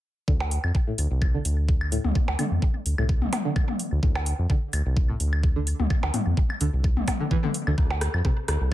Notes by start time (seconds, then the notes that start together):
0.28 D2 D3, kick
0.40 percussion blips
0.51 open hi-hat
0.64 F2, claves
0.75 kick
0.87 A2
0.98 D2, open hi-hat
1.11 C2
1.22 kick, claves
1.34 D3
1.45 D2, open hi-hat
1.69 kick
1.81 claves
1.92 A2, open hi-hat
2.04 D2, high tom
2.15 kick
2.28 D2, percussion blips
2.39 D3, open hi-hat, high tom, claves
2.51 F2
2.62 kick
2.86 D2, open hi-hat
2.98 C2 A2, claves
3.09 kick
3.22 high tom
3.33 open hi-hat, high tom, percussion blips
3.45 D3
3.56 kick, claves
3.69 high tom
3.79 open hi-hat
3.92 D2
4.03 D2 A2, kick
4.15 percussion blips, claves
4.26 open hi-hat
4.39 F2
4.50 D3, kick
4.73 D2, open hi-hat, claves
4.86 C2
4.97 kick
5.09 A2
5.20 D2, open hi-hat
5.33 claves
5.43 kick
5.56 D3
5.67 open hi-hat
5.80 D2, high tom
5.90 kick, claves
6.03 D2, percussion blips
6.14 A2, open hi-hat, high tom
6.26 F2
6.37 kick
6.50 claves
6.61 D2 D3, open hi-hat
6.73 C2
6.84 kick
6.97 high tom
7.08 kick, open hi-hat, high tom, percussion blips, claves
7.20 D3
7.31 E3, kick
7.44 D3, high tom
7.54 open hi-hat
7.67 D2 D3, claves
7.78 D2, kick, cross-stick
7.90 percussion blips
8.01 cross-stick, open hi-hat
8.14 F2, claves
8.25 C3, kick, cross-stick
8.48 D2, cross-stick, open hi-hat
8.61 C2